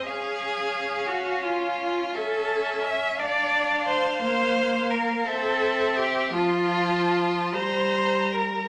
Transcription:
X:1
M:6/8
L:1/8
Q:3/8=57
K:Db
V:1 name="Violin"
f6 | [K:Dm] e3 f3- | f3 e3 | a3 b3 |]
V:2 name="Cello"
A3 G F2 | [K:Dm] A2 e d2 c | c2 B A2 G | F3 c2 B |]
V:3 name="Violin"
A3 G F2 | [K:Dm] A2 e d2 c | c2 B A2 G | F3 c2 B |]
V:4 name="Viola"
D6 | [K:Dm] ^C3 D3 | B,3 C3 | F,3 G,3 |]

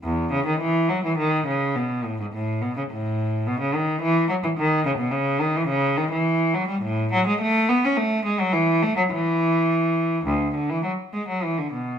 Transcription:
X:1
M:3/4
L:1/16
Q:1/4=105
K:Alyd
V:1 name="Cello" clef=bass
E,,2 C, D, E,2 F, E, D,2 C,2 | B,,2 A,, G,, A,,2 B,, C, A,,4 | B,, C, D,2 E,2 F, E, D,2 C, B,, | C,2 D, E, C,2 D, E,3 F, =G, |
[K:Emix] A,,2 F, G, A,2 B, C A,2 G, F, | E,2 A, F, E,8 | D,,2 D, E, F,2 G, F, E, D, B,,2 |]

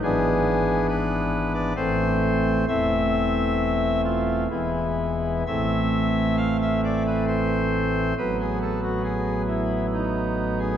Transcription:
X:1
M:3/4
L:1/16
Q:1/4=67
K:Am
V:1 name="Pipe organ"
^G4 B3 d c4 | e6 F2 E4 | e4 f e d B c4 | B ^G A ^F G2 E2 ^D3 G |]
V:2 name="Pipe organ" clef=bass
[^G,,,^G,,E,B,D]8 [A,,,A,,E,A,C]4 | [E,,,E,,E,A,C]8 [E,,,E,,E,^G,B,]4 | [A,,,A,,E,A,C]12 | [A,,,A,,^F,B,]12 |]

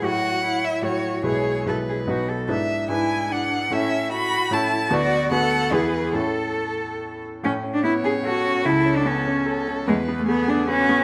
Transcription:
X:1
M:3/4
L:1/16
Q:1/4=148
K:E
V:1 name="Violin"
f6 e2 c4 | c4 B6 z2 | [K:A] e4 g4 f4 | e4 b4 a4 |
d4 f4 B4 | A8 z4 | z4 c8 | A8 A4 |
B4 G4 F4 |]
V:2 name="Cello"
F4 E4 F4 | G4 A2 G2 F2 A2 | [K:A] z4 E4 D4 | C4 F4 E4 |
F4 A4 G4 | A8- A2 z2 | C3 D E2 G2 F4 | E3 D C6 z2 |
G,3 A, B,2 D2 C4 |]
V:3 name="Grand piano"
[A,,F,Ec]8 [A,,F,Ec]4 | [B,,,G,EB]4 [B,,,G,EB]4 [B,,,B,DB]4 | [K:A] [G,,DEB]4 [G,,DEB]8 | [A,,CEA]8 [A,,CEA]4 |
[D,,B,FB]4 [D,,B,FB]4 [E,,B,EG]4 | [A,,CEA]12 | A,,2 C2 B,2 C2 A2 C2 | C,,2 C2 B,2 C2 A2 C2 |
E,,2 B,2 A,2 B,2 B2 B,2 |]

